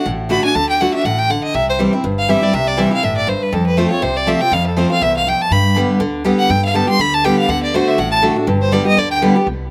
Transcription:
0.06 0.36 A1 medium
0.06 0.53 A2 medium
0.29 0.43 D3 medium
0.29 0.43 A3 medium
0.29 0.43 D4 medium
0.29 0.42 F#4 medium
0.29 0.43 B5 loud
0.43 0.55 D4 soft
0.43 0.54 F#4 medium
0.43 0.56 G#5 medium
0.55 0.86 D2 medium
0.55 0.79 D3 medium
0.55 0.68 A5 loud
0.69 0.82 G5 medium
0.80 0.93 D3 medium
0.80 0.94 A3 medium
0.80 0.94 D4 medium
0.80 0.93 F#4 medium
0.80 0.93 F#5 medium
0.94 1.05 D4 soft
0.94 1.05 F#4 medium
0.94 1.06 E5 loud
1.04 1.35 A1 medium
1.04 1.29 A2 medium
1.04 1.20 F#5 medium
1.18 1.31 G5 loud
1.30 1.53 D3 medium
1.30 1.43 F#5 medium
1.43 1.56 D#5 medium
1.54 1.85 C2 loud
1.54 2.02 C3 medium
1.54 1.68 E5 loud
1.69 1.76 C5 loud
1.79 1.92 E3 medium
1.79 1.92 G3 medium
1.79 1.93 C4 medium
1.79 1.92 E4 loud
1.93 2.04 C4 soft
1.93 2.04 E4 medium
2.04 2.35 G1 medium
2.04 2.51 G2 medium
2.18 2.31 F5 loud
2.29 2.42 E3 medium
2.29 2.42 G3 medium
2.29 2.42 C4 medium
2.29 2.40 E4 loud
2.29 2.45 E5 medium
2.41 2.54 C4 soft
2.41 2.53 E4 medium
2.41 2.55 D5 medium
2.53 2.84 C2 medium
2.53 3.01 C3 medium
2.53 2.68 E5 loud
2.67 2.80 D5 loud
2.77 2.91 E3 medium
2.77 2.91 G3 medium
2.77 2.90 C4 medium
2.77 2.89 E4 medium
2.77 2.92 E5 medium
2.91 3.03 C4 soft
2.91 3.02 E4 medium
2.91 3.05 F5 loud
3.03 3.34 G1 medium
3.03 3.27 A2 medium
3.03 3.16 E5 loud
3.17 3.30 D5 loud
3.27 3.51 G2 medium
3.27 3.44 C5 medium
3.42 3.55 B4 medium
3.52 4.00 F2 medium
3.52 3.83 F2 loud
3.52 3.66 A4 medium
3.66 3.79 B4 medium
3.77 3.90 F3 medium
3.77 3.90 A3 medium
3.77 3.91 C4 medium
3.77 3.89 F4 medium
3.77 3.90 C5 medium
3.90 4.02 C4 soft
3.90 4.02 F4 medium
3.90 4.04 C#5 loud
4.02 4.33 C2 medium
4.02 4.49 C3 medium
4.02 4.18 C5 loud
4.16 4.29 D5 loud
4.27 4.40 F3 medium
4.27 4.40 A3 medium
4.27 4.40 C4 medium
4.27 4.40 F4 loud
4.27 4.42 E5 medium
4.41 4.52 C4 medium
4.41 4.51 F4 medium
4.41 4.54 G5 loud
4.52 4.82 F2 medium
4.52 4.99 F2 medium
4.52 4.66 F5 loud
4.67 4.78 A4 medium
4.77 4.90 F3 medium
4.77 4.90 A3 medium
4.77 4.90 C4 medium
4.77 4.89 F4 medium
4.77 4.90 C5 medium
4.90 5.02 C4 soft
4.90 5.01 F4 medium
4.90 5.04 F5 loud
5.01 5.32 C2 medium
5.01 5.25 E2 medium
5.01 5.15 E5 loud
5.17 5.30 F5 loud
5.27 5.50 F2 medium
5.27 5.42 G5 medium
5.41 5.53 A5 loud
5.51 5.82 G2 medium
5.51 5.98 G2 medium
5.51 5.76 B5 loud
5.76 5.99 D3 medium
5.76 6.00 G3 medium
5.76 6.00 B3 medium
5.76 6.00 G4 medium
6.00 6.31 D2 medium
6.00 6.23 D3 medium
6.24 6.48 D3 medium
6.24 6.49 G3 medium
6.24 6.49 B3 medium
6.24 6.49 G4 medium
6.39 6.51 F#5 loud
6.50 6.97 G2 medium
6.50 6.81 G2 loud
6.50 6.63 G5 loud
6.65 6.77 F5 medium
6.74 6.87 D3 medium
6.74 6.88 G3 medium
6.74 6.87 B3 medium
6.74 6.86 G4 medium
6.74 6.88 A5 medium
6.87 6.99 B3 soft
6.87 6.98 G4 medium
6.87 7.02 C6 loud
6.99 7.30 D2 medium
6.99 7.23 D3 loud
6.99 7.15 B5 loud
7.14 7.26 A5 loud
7.24 7.48 D3 medium
7.24 7.48 G3 medium
7.24 7.48 B3 medium
7.24 7.49 G4 loud
7.24 7.38 G5 medium
7.39 7.51 F5 medium
7.48 7.79 D2 loud
7.48 7.73 D3 medium
7.48 7.62 F#5 loud
7.63 7.76 D5 medium
7.74 7.98 D3 medium
7.74 7.98 A3 medium
7.74 7.98 D4 loud
7.74 7.98 F#4 loud
7.74 7.89 C5 medium
7.87 8.00 E5 loud
7.98 8.29 A1 medium
7.98 8.46 A2 loud
7.98 8.11 F#5 medium
8.11 8.18 A5 loud
8.22 8.36 D3 medium
8.22 8.36 A3 loud
8.22 8.36 D4 medium
8.22 8.35 F#4 medium
8.36 8.48 D4 soft
8.36 8.47 F#4 medium
8.47 8.78 G1 loud
8.47 8.95 G2 loud
8.61 8.74 C5 medium
8.72 8.85 D3 medium
8.72 8.85 G3 loud
8.72 8.85 B3 loud
8.72 8.84 G4 loud
8.72 8.86 D5 loud
8.85 8.97 B3 medium
8.85 8.96 G4 medium
8.85 9.00 D#5 loud
8.97 9.28 D2 medium
8.97 9.21 D3 loud
8.97 9.10 D5 medium
9.11 9.18 G5 loud
9.22 9.35 D3 medium
9.22 9.35 G3 loud
9.22 9.35 B3 medium
9.22 9.34 G4 medium
9.36 9.47 B3 soft
9.36 9.47 G4 medium
9.47 9.71 C2 medium

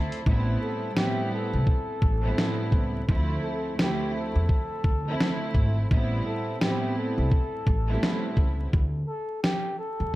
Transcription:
0.00 0.20 D2 loud
0.00 0.20 F3 medium
0.00 0.21 A3 medium
0.00 0.21 C4 medium
0.00 0.21 E4 loud
0.00 0.21 A4 medium
0.00 0.24 D5 medium
0.00 0.22 A5 medium
0.00 0.24 A5 medium
0.00 0.21 C6 medium
0.12 closed hi-hat soft
0.26 0.54 A1 loud
0.26 0.92 A2 loud
0.26 0.92 G3 medium
0.26 0.92 B3 medium
0.26 0.93 C4 loud
0.26 0.93 E4 loud
0.26 kick loud
0.61 0.93 A4 medium
0.96 1.95 A2 loud
0.96 1.95 G3 loud
0.96 1.96 B3 loud
0.96 1.96 C4 loud
0.96 1.96 E4 loud
0.96 1.29 G4 medium
0.96 snare loud
1.34 3.05 A4 medium
1.53 1.65 C2 medium
1.67 kick medium
2.02 2.30 A1 medium
2.02 kick medium
2.22 3.02 A2 loud
2.22 3.02 G3 loud
2.22 3.03 B3 medium
2.22 3.03 C4 medium
2.22 3.03 E4 loud
2.38 snare loud
2.72 3.01 C#2 medium
2.72 kick medium
3.07 3.73 D2 loud
3.07 3.37 D2 loud
3.07 3.74 F3 medium
3.07 3.74 A3 medium
3.07 3.74 C4 medium
3.07 3.75 E4 loud
3.07 kick loud
3.42 3.74 A4 medium
3.77 4.77 D2 loud
3.77 4.77 F3 loud
3.77 4.78 A3 loud
3.77 4.78 C4 medium
3.77 4.78 E4 loud
3.77 4.12 G4 medium
3.77 snare loud
4.14 5.87 A4 medium
4.35 4.47 E2 medium
4.49 kick medium
4.84 5.13 D2 medium
4.84 kick medium
5.05 5.85 D2 medium
5.05 5.85 F3 medium
5.05 5.85 A3 medium
5.05 5.86 C4 medium
5.05 5.86 E4 loud
5.20 snare loud
5.54 5.83 G#1 medium
5.54 kick medium
5.90 6.19 A1 loud
5.90 6.56 A2 loud
5.90 6.57 G3 medium
5.90 6.57 B3 medium
5.90 6.57 C4 loud
5.90 6.58 E4 loud
5.90 kick loud
6.26 6.58 A4 medium
6.60 7.60 A2 loud
6.60 7.60 G3 loud
6.60 7.60 B3 loud
6.60 7.61 C4 loud
6.60 7.61 E4 loud
6.60 6.93 G4 medium
6.60 snare loud
6.97 8.69 A4 medium
7.18 7.29 C2 medium
7.32 kick medium
7.67 7.95 A1 medium
7.67 kick medium
7.87 8.67 A2 loud
7.87 8.67 G3 loud
7.87 8.67 B3 medium
7.87 8.68 C4 medium
7.87 8.68 E4 loud
8.03 snare loud
8.37 8.65 C#2 medium
8.37 kick medium
8.73 9.01 D2 loud
8.73 kick loud
9.07 9.40 A4 medium
9.43 9.75 G4 medium
9.43 snare loud
9.79 10.15 A4 medium
10.00 10.11 E2 medium

